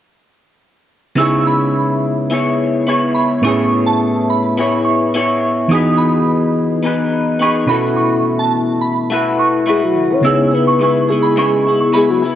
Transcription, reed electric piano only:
1.15 3.39 C#3 medium
1.15 3.40 B3 medium
1.15 3.40 D#4 medium
1.15 3.41 E4 medium
1.20 3.41 G#4 medium
3.42 5.66 A2 medium
3.42 5.66 B3 medium
3.42 5.67 C#4 medium
3.42 5.67 E4 medium
3.46 5.68 G#4 medium
5.68 7.64 E3 medium
5.68 7.65 B3 medium
5.68 7.65 D#4 medium
5.68 7.66 F#4 medium
5.73 7.67 G#4 medium
7.66 9.91 B2 medium
7.66 9.91 C#4 medium
7.66 9.92 E4 medium
7.66 9.92 F#4 medium
7.71 9.93 A4 medium
10.21 12.35 C#3 medium
10.21 12.35 B3 medium
10.21 12.35 D#4 soft
10.25 12.35 E4 medium
10.25 12.35 G#4 medium

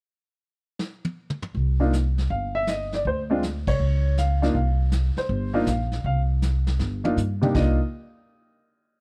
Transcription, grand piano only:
1.80 1.91 A#3 medium
1.80 1.91 D4 medium
1.80 1.91 D#4 medium
1.80 1.91 F4 medium
2.30 2.54 F5 medium
2.55 2.67 E5 medium
2.69 2.92 D#5 medium
2.94 3.05 D5 medium
3.07 3.21 C5 medium
3.30 3.41 G#3 medium
3.30 3.41 C4 medium
3.30 3.41 D4 medium
3.30 3.41 F4 medium
3.68 4.14 C#5 medium
4.19 4.53 F5 medium
4.42 4.53 A#3 medium
4.42 4.53 D4 medium
4.42 4.54 D#4 medium
4.42 4.54 F4 medium
4.55 4.79 F5 medium
5.18 5.64 C5 medium
5.53 5.65 A#3 medium
5.53 5.65 D4 medium
5.53 5.66 D#4 medium
5.53 5.66 F4 medium
5.68 6.02 F5 medium
6.06 6.20 F5 medium
7.04 7.15 A#3 medium
7.04 7.16 D4 medium
7.04 7.16 D#4 medium
7.04 7.16 F4 medium
7.41 7.53 C3 medium
7.41 7.53 A#3 medium
7.41 7.53 D4 medium
7.41 7.53 D#4 medium
7.41 7.54 G4 medium
7.55 7.77 A#3 medium
7.55 7.77 D4 medium
7.55 7.77 D#4 medium
7.55 7.77 F4 medium
7.55 7.78 D#5 medium

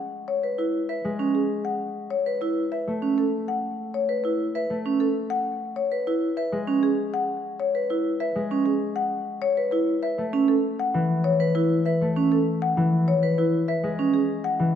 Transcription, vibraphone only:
0.43 0.63 B4 soft
0.58 0.79 E4 medium
0.89 1.09 B4 soft
1.19 1.39 C#4 medium
2.26 2.46 B4 medium
2.42 2.61 E4 medium
2.72 2.92 B4 soft
3.02 3.22 C#4 medium
4.09 4.29 B4 medium
4.25 4.44 E4 soft
4.55 4.75 B4 medium
4.86 5.05 C#4 medium
5.92 6.12 B4 medium
6.07 6.27 E4 medium
6.37 6.57 B4 medium
6.67 6.88 C#4 medium
7.75 7.94 B4 medium
7.90 8.10 E4 medium
8.20 8.40 B4 medium
8.51 8.71 C#4 medium
9.57 9.77 B4 medium
9.72 9.92 E4 medium
10.03 10.23 B4 medium
10.33 10.53 C#4 medium
11.40 11.60 B4 medium
11.55 11.75 E4 medium
11.86 12.06 B4 medium
12.16 12.36 C#4 medium
13.23 13.43 B4 medium
13.38 13.58 E4 medium
13.69 13.88 B4 medium
13.99 14.19 C#4 medium

